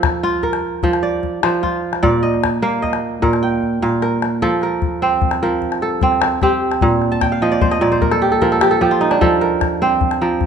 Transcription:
Already playing: F3 A4 A#4
0.03 calabash thump, calabash click
0.23 F4
0.43 A#4, calabash thump
0.53 calabash click
0.83 F3, calabash thump
0.93 calabash click
1.03 D5
1.23 calabash thump
1.43 F3 C5, calabash click
1.63 F4, calabash thump
1.93 calabash click
2.03 A#2 D5, calabash thump
2.23 D#5, calabash click
2.34 calabash click
2.44 calabash thump, calabash click
2.62 A#3 F5
2.82 D#5, calabash thump, calabash click
2.93 calabash click
3.22 A#2 A#4, calabash thump
3.33 calabash click
3.43 G5
3.62 calabash thump
3.82 A#2 F5, calabash thump
4.02 A#4, calabash click
4.22 calabash click
4.42 F3 A4, calabash thump
4.62 A#4, calabash click
4.82 calabash thump
5.02 C4 C5
5.22 calabash thump
5.31 calabash click
5.43 F3 A#4
5.62 calabash thump
5.72 calabash click
5.82 A4
6.01 C4, calabash thump
6.12 calabash click
6.22 calabash click
6.32 calabash click
6.42 C4 G4, calabash thump, calabash click
6.72 calabash click
6.81 A#2, calabash thump
7.02 calabash click
7.12 A5
7.21 G5, calabash thump, calabash click
7.32 F5
7.42 F3 D#5
7.52 D5
7.61 C5, calabash thump
7.71 D#5, calabash click
7.81 A#2 D5
7.92 C5
8.01 A#4, calabash thump
8.12 A4, calabash click
8.22 G4
8.32 A4
8.41 F3 A#4, calabash thump
8.51 A4, calabash click
8.61 G4, calabash click
8.71 A4, calabash click
8.81 F3 G4, calabash thump, calabash click
8.91 F4
9.01 D#4
9.11 D4, calabash click
9.21 F3 A4, calabash thump
9.41 A#4, calabash click
9.61 calabash thump, calabash click
9.82 C4 C5
10.01 calabash thump
10.11 calabash click
10.21 F3 A#4
10.41 calabash thump

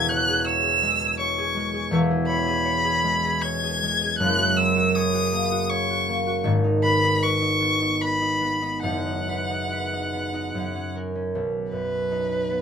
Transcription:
Already playing: E1 E2 G#3 G#4 E5 G#6
0.09 C#5 F#6
0.28 G#4
0.45 C#5 E6
0.64 G#4
0.82 G#3
1.01 G#4
1.19 C#5 C#6
1.38 G#4
1.56 G#3
1.74 G#4
1.91 E1 E2
2.11 G#4
2.27 C#5 B5
2.47 G#4
2.65 C#5
2.84 G#4
3.04 G#3
3.25 G#4
3.42 C#5 G#6
3.64 G#4
3.83 G#3
4.01 G#4
4.18 F#1 F#2 F#6
4.38 F#4
4.57 A#4 E6
4.76 F#4
4.96 C#5 D#6
5.14 F#4
5.33 A#3
5.52 F#4
5.70 C#5 C#6
5.90 F#4
6.09 A#3
6.27 F#4
6.44 G#1 G#2
6.64 D#4
6.84 B4 B5
7.03 D#4
7.23 B4 C#6
7.42 D#4
7.61 B3
7.81 D#4
8.01 B4 B5
8.21 D#4
8.41 B3
8.62 D#4
8.83 F#1 F#2 F#5
9.05 D#4
9.29 B4
9.50 D#4
9.72 B4
9.92 D#4
10.13 B3
10.33 D#4
10.55 F#2
10.76 C#4
10.96 A#4
11.15 C#4
11.35 B1
11.72 F#2 B4
12.11 D#4
12.51 B3

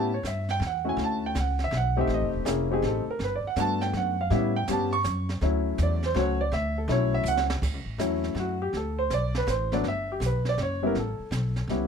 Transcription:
Already playing: A2 A5
0.14 C#5
0.23 G2 E5, snare, hi-hat pedal
0.49 G5, snare
0.60 E2, snare
0.66 F#5
0.85 A3 C#4 E4 F#4
0.89 G#5
0.97 D2, brush sweep, snare
1.04 A5
1.26 G5
1.35 C#2, snare, hi-hat pedal
1.40 F#5
1.59 snare
1.64 E5
1.71 B1, snare
1.77 F#5
1.97 A3 C4 D#4 G4
2.01 E5
2.07 A1, brush sweep, snare
2.14 D#5
2.21 F1
2.33 D#1
2.45 F1 A#3 C#4 E4 G#4, snare, hi-hat pedal
2.70 A3 C4 D#4 G4 G#4
2.82 A1, snare
2.87 A4
3.06 muted upright bass stroke
3.10 A#4
3.19 G1, brush sweep, snare
3.24 B4
3.35 D5
3.44 F#5, muted upright bass stroke
3.56 G2 A3 B3 D4 F#4 A5, snare, hi-hat pedal
3.81 G5, snare
3.93 F#2 F#5, snare
4.21 F5
4.30 A2 G3 B3 C#4 E4, brush sweep, snare
4.35 E5
4.56 G5
4.68 G2 G3 B3 C#4 G4 A5, snare, hi-hat pedal
4.93 C#6
5.04 F#2, snare, hi-hat pedal
5.29 snare
5.41 D2 F#3 A3 C#4 E4, brush sweep, snare
5.78 E2, snare, hi-hat pedal
5.83 D5
6.03 C5, snare
6.14 C#2 F#3 A3 C#4 F#4, snare
6.19 C#5
6.41 D5
6.52 D2 E5, brush sweep, snare
6.78 A4
6.88 B1 F#3 A3 C#4 E4, snare
6.92 C#5
7.14 E5
7.24 C#2, hi-hat pedal
7.28 F#5
7.37 snare
7.50 snare
7.62 D2, brush sweep, kick, snare, crash
7.73 C#2
7.85 A1
7.98 E2 F#3 A3 C#4 E4, snare, hi-hat pedal
8.24 snare
8.35 F#2, snare
8.39 F#4
8.62 G4
8.73 D2, brush sweep, snare
8.77 A4
8.99 C5
9.10 B1 D5, snare, hi-hat pedal
9.35 B4, snare
9.47 A1 C5, snare, hi-hat pedal
9.72 F#3 A3 B3 D4 D5, snare
9.84 G1, brush sweep, snare
9.88 E5
10.12 G4
10.20 B1, snare, hi-hat pedal
10.26 B4
10.45 D5, snare
10.58 F#1, snare
10.63 C#5
10.82 G3 B3 C#4 E4
10.87 A#4
10.95 A1, brush sweep, snare
10.99 A4
11.19 muted upright bass stroke
11.31 B1, snare, hi-hat pedal
11.56 snare
11.68 C#2 G3 B3 C#4 E4, snare

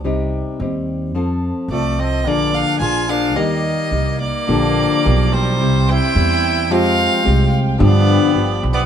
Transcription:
0.04 C2 C3 G3 C4 D#4 G4
0.60 D#2 G3 C4 D#4 G4
1.14 F2 F3 C4 F4 A4
1.68 C2 F3 A3 C4 F4 A4 D5
1.99 C4 D#5
2.25 A#1 A#2 D3 F3 A#3 D4 G#4 D5
2.54 D4 F5
2.80 A#1 F3 A#3 D4 F4 G#4 G#5
3.09 F3 A#3 D4 G#4 F5
3.35 D#2 D#3 G3 A#3 D#4 G4 D#5
3.91 C2 G3 A#3 D#4 G4
4.21 A#3 D5
4.47 A#1 A#2 D3 F3 A#3 D4 G4 D5 G5 A#5
5.04 B1 F3 A#3 D4 G4
5.33 G3 C5
5.59 C2 C3 G3 C4 E4 G4 C6
5.64 E5
5.88 E4 G5
6.15 E2 G3 C4 E4 G4
6.70 F2 F3 G#3 C4 F4 G4 F5
7.23 C2 G#3 C4 F4 G4
7.78 G2 D3 F3 B3 D4 G4
7.82 B3 D5 B5
8.34 G1 F3 B3 D4 G4
8.63 B1
8.73 B3 D5

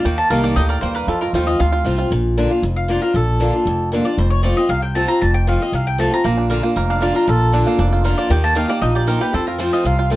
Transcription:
0.05 D#2 D#3 A#3 G5
0.18 A5
0.30 C2 D#3 A#3 D#4 G4 A#4 F5
0.43 A#3 D5
0.56 D2 A2 G4 D#5
0.69 A#4 D5
0.81 D#2 G2 A#3 C5
0.95 A#4 B4
1.07 F2 F4 A4
1.21 F4 A#4
1.33 D#2 F3 A3 C4 F4 C5
1.47 C4 F4 D#5
1.60 D2 C3 F4 F5
1.72 F4
1.85 C2 F3 A3 C4 F4
1.98 C4 F4
2.10 A#1 A#2
2.38 D3 A#3 D4 F4
2.50 D4 F4
2.63 F1 F2
2.76 F5
2.88 D3 A#3 D4 F4 D5
3.02 D4 F4 A#4
3.14 A#1 A#2 A4
3.40 D3 A#3 D4 F4
3.53 D4 F4
3.66 F1 F2
3.92 D3 A#3 D4 F4
4.05 D4 F4 D5
4.18 F1 F2 C5
4.30 C#5
4.43 F3 A3 C4 F4 D5
4.57 C4 F4 D#5
4.69 C2 C3 F5
4.82 G5
4.95 F3 A3 C4 F4 A5
5.08 C4 F4 A#5
5.21 F1 F2 A5
5.34 G5
5.47 F3 A3 C4 F4 F5
5.60 C4 F4 D#5
5.72 C2 C3 F5
5.87 G5
5.98 F3 A3 C4 F4 A5
6.12 C4 F4 A#5
6.24 A#1 A#2 A#3
6.38 D4
6.50 D3 A#3 D4 F4 A#4
6.63 A#3 D4 F4
6.76 F1 F2 A#4
6.90 D4 F5
7.01 D3 A#3 D4 F4 D5
7.15 D4 F4 A#4
7.28 A#1 A#2 F4 A4
7.52 D3 A#3 D4 F4
7.66 A#3 D4 F4
7.79 F1 F2 D4
7.93 F4
8.04 D3 A#3 D4 F4 A#4
8.18 F4 D5
8.30 D#2 D#3 G4 G5
8.44 A#3 A5
8.55 D#3 A#3 D#4 G4 F5
8.68 A#3 D#4 G4 D5
8.81 A#1 A#2 D#4 D#5
8.95 G4 D5
9.07 D#3 A#3 D#4 G4 A#4 C5
9.20 D#4 G4 B4
9.33 F2 C4 A4
9.47 F4 A#4
9.58 F3 A3 C4 F4 C5
9.73 F4 D#5
9.84 C2 C3 F4 F5
9.99 F4
10.10 F3 A3 C4 F4

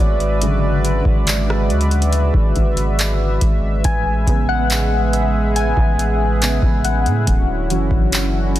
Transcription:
Already playing: B4
0.00 G#1 G#3 F#4 D5 E5
0.20 closed hi-hat
0.42 C#3 D3 F#3 G#3, closed hi-hat
0.85 closed hi-hat
1.05 G#1, kick
1.27 clap, closed hi-hat
1.50 cross-stick
1.70 D2, closed hi-hat
1.81 closed hi-hat
1.91 closed hi-hat
2.02 closed hi-hat
2.13 closed hi-hat
2.34 G#1, kick
2.56 G#1, kick, closed hi-hat
2.77 closed hi-hat
2.99 clap, closed hi-hat
3.41 G#1, kick, closed hi-hat
3.84 A1 G#3 G#4 G#5, kick, closed hi-hat
4.27 A1 C#3 G#3 B3, kick, closed hi-hat
4.49 F#5
4.70 clap, closed hi-hat
5.13 E5, closed hi-hat
5.56 G#5, closed hi-hat
5.77 A1, kick
5.99 closed hi-hat
6.42 C#3 G#3 B3, clap, closed hi-hat
6.62 A1, kick
6.85 F#5, closed hi-hat
7.06 A2, closed hi-hat
7.27 D1 D3 C#4 E4 F#4, kick, closed hi-hat
7.70 F#1 E3 F#3 C#4, closed hi-hat
7.91 F#1, kick
8.12 clap, closed hi-hat
8.56 closed hi-hat

